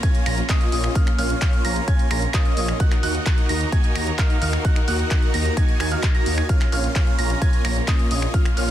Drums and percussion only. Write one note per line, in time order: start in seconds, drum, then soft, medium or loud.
0.03 kick loud
0.03 closed hi-hat loud
0.15 closed hi-hat soft
0.26 finger snap medium
0.26 open hi-hat loud
0.38 closed hi-hat soft
0.49 kick loud
0.49 clap loud
0.49 closed hi-hat loud
0.61 closed hi-hat soft
0.72 open hi-hat loud
0.84 finger snap medium
0.84 closed hi-hat soft
0.95 kick loud
0.95 closed hi-hat loud
1.07 finger snap medium
1.07 closed hi-hat soft
1.19 open hi-hat loud
1.30 closed hi-hat soft
1.42 kick loud
1.42 clap loud
1.42 closed hi-hat medium
1.53 closed hi-hat soft
1.65 open hi-hat loud
1.76 closed hi-hat soft
1.88 kick loud
1.88 closed hi-hat medium
1.99 closed hi-hat soft
2.11 finger snap medium
2.11 open hi-hat loud
2.22 closed hi-hat soft
2.34 kick loud
2.34 clap loud
2.34 closed hi-hat loud
2.45 closed hi-hat soft
2.57 open hi-hat loud
2.68 finger snap medium
2.68 closed hi-hat soft
2.80 kick loud
2.80 closed hi-hat medium
2.92 finger snap medium
2.92 clap soft
2.92 closed hi-hat soft
3.03 open hi-hat loud
3.15 closed hi-hat soft
3.26 kick loud
3.26 clap loud
3.26 closed hi-hat medium
3.38 closed hi-hat soft
3.49 open hi-hat loud
3.61 closed hi-hat soft
3.72 kick loud
3.72 closed hi-hat medium
3.84 closed hi-hat soft
3.95 finger snap medium
3.95 open hi-hat loud
4.07 closed hi-hat soft
4.19 kick loud
4.19 clap loud
4.19 closed hi-hat medium
4.30 closed hi-hat soft
4.42 open hi-hat loud
4.53 finger snap medium
4.65 kick loud
4.65 closed hi-hat medium
4.76 finger snap medium
4.76 closed hi-hat soft
4.88 open hi-hat loud
4.99 closed hi-hat soft
5.11 kick loud
5.11 clap loud
5.11 closed hi-hat medium
5.22 closed hi-hat soft
5.34 open hi-hat loud
5.46 closed hi-hat soft
5.57 kick loud
5.57 closed hi-hat medium
5.69 closed hi-hat soft
5.80 finger snap medium
5.80 open hi-hat loud
5.92 closed hi-hat soft
6.03 kick loud
6.03 clap loud
6.03 closed hi-hat medium
6.15 closed hi-hat soft
6.26 open hi-hat loud
6.38 finger snap medium
6.49 kick loud
6.49 closed hi-hat medium
6.61 finger snap medium
6.61 clap soft
6.61 closed hi-hat soft
6.72 open hi-hat loud
6.84 closed hi-hat soft
6.95 kick loud
6.95 clap loud
6.95 closed hi-hat medium
7.07 closed hi-hat soft
7.19 open hi-hat medium
7.30 closed hi-hat soft
7.42 kick loud
7.42 closed hi-hat medium
7.53 closed hi-hat soft
7.65 finger snap medium
7.65 open hi-hat loud
7.76 closed hi-hat soft
7.88 kick loud
7.88 clap loud
7.88 closed hi-hat medium
7.99 closed hi-hat soft
8.11 open hi-hat loud
8.22 finger snap medium
8.34 kick loud
8.34 closed hi-hat medium
8.45 finger snap medium
8.45 closed hi-hat soft
8.57 open hi-hat loud